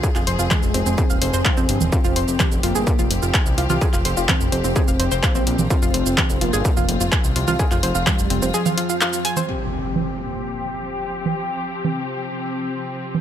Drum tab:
HH |--o---o---o---o-|--o---o---o---o-|--o---o---o---o-|--o---o---o---o-|
SH |xx-xxx-xxx-xxx-x|xx-xxx-xxx-xxx-x|xx-xxx-xxx-xxx-x|xx-xxx-xxx-xxx-x|
CP |-x--x-------x---|----x-------x---|-x--x-------x---|----x-------x---|
CG |----O----------O|----O----------O|----O----------O|----O----------O|
BD |o---o---o---o---|o---o---o---o---|o---o---o---o---|o---o---o---o---|

HH |--o---o---o---o-|----------------|----------------|
SH |xx-xxx-xxx-xxx-x|----------------|----------------|
CP |-x--x-------x---|----------------|----------------|
CG |----O----O-----O|----O----------O|----O----------O|
BD |o---o-----------|----------------|----------------|